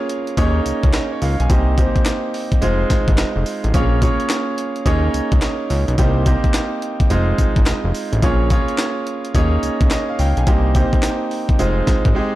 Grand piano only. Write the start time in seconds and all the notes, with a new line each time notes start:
Already playing: A#3 C#4 F4 G#4 C#5
0.37 A#3 C#4 D#4 G#4 C#5
1.12 C#5
1.22 F5
1.40 G#5
1.50 A#3 C4 D#4 G4 C5
1.78 A#3 C4 D#4 G4 C5
2.61 G#3 C4 D#4 F4 C5
3.74 A#3 C#4 F4 G#4 C#5
4.01 A#3 C#4 F4 G#4 C#5
4.85 A#3 C#4 D#4 G#4 C#5
5.98 A#3 C4 D#4 G4 C5
6.26 A#3 C4 D#4 G4 C5
7.10 G#3 C4 D#4 F4 C5
8.22 A#3 C#4 F4 G#4 C#5
8.51 A#3 C#4 F4 G#4 C#5
9.34 A#3 C#4 D#4 G#4 C#5
9.91 D#5
10.09 F5
10.19 G5
10.38 G#5
10.47 A#3 C4 D#4 G4 C5
10.75 A#3 C4 D#4 G4 C5
11.59 G#3 C4 D#4 F4 C5
12.15 G#3 C4 D#4 G4 C5